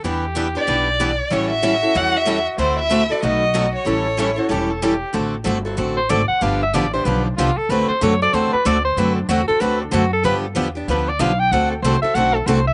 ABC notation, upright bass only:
X:1
M:4/4
L:1/8
Q:"Swing" 1/4=188
K:Dmix
V:1 name="Upright bass" clef=bass
E,,4 B,,,4 | A,,,4 E,,4 | D,,4 B,,,4 | A,,,4 E,,,4 |
A,,,2 G,,,2 A,,,2 ^G,,, z | G,,,2 A,,,2 B,,,2 C,, z | D,, z F,,2 E,, z D,,2 | F,,2 E,, z D,,2 F,,2 |
G,,2 E,,2 D,,2 B,,,2 | D,,2 C,, z B,,,2 C,,2 |]